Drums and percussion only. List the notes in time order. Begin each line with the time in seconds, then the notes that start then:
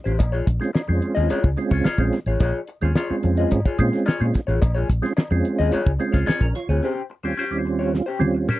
0.06 closed hi-hat
0.19 kick, closed hi-hat, cowbell
0.47 kick, closed hi-hat
0.61 snare, closed hi-hat
0.75 snare, cowbell
1.02 closed hi-hat
1.16 closed hi-hat
1.30 closed hi-hat, cowbell
1.44 kick
1.57 closed hi-hat
1.70 kick, closed hi-hat
1.85 snare, cowbell
1.98 kick, closed hi-hat
2.13 snare, closed hi-hat
2.26 closed hi-hat
2.40 kick, closed hi-hat, cowbell
2.67 closed hi-hat
2.81 snare, closed hi-hat
2.95 snare, cowbell
3.23 closed hi-hat
3.37 closed hi-hat
3.51 kick, closed hi-hat, cowbell
3.66 kick, closed hi-hat
3.79 kick, closed hi-hat
3.93 snare, closed hi-hat
4.06 snare, cowbell
4.21 closed hi-hat
4.34 kick, snare, closed hi-hat
4.49 closed hi-hat
4.62 kick, closed hi-hat, cowbell
4.90 kick, closed hi-hat
5.04 snare, closed hi-hat
5.17 snare, cowbell
5.31 closed hi-hat
5.45 closed hi-hat
5.58 closed hi-hat
5.72 closed hi-hat, cowbell
5.87 kick, closed hi-hat
6.00 closed hi-hat
6.14 kick, snare, closed hi-hat
6.27 snare, cowbell
6.41 kick, closed hi-hat
6.55 snare, closed hi-hat
6.69 closed hi-hat
7.94 snare
8.21 high tom
8.49 mid tom